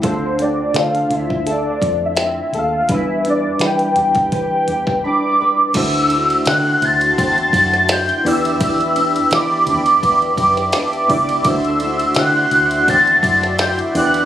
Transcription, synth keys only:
X:1
M:4/4
L:1/8
Q:"Swing 16ths" 1/4=84
K:Dmix
V:1 name="Synth keys"
[A,D=Fc] z [A,DFc]3 z3 | [G,DEB] z [G,DEB]3 z b2 | [A,DEFc]3 z4 [B,DEGd]- | [B,DEGd]2 z4 z [B,DEGd] |
[A,DEFc]3 z4 [B,DEGd] |]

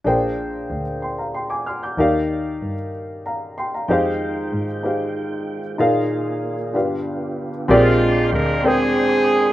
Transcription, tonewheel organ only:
X:1
M:6/8
L:1/8
Q:3/8=63
K:Bbmix
V:1 name="Tonewheel organ"
z6 | z6 | [A,Fg]6 | [B,A]3 [=B,G]3 |
[dgc']6 |]
V:2 name="Tonewheel organ" clef=bass
z6 | z6 | E,6- | E,3 D,3 |
A,6 |]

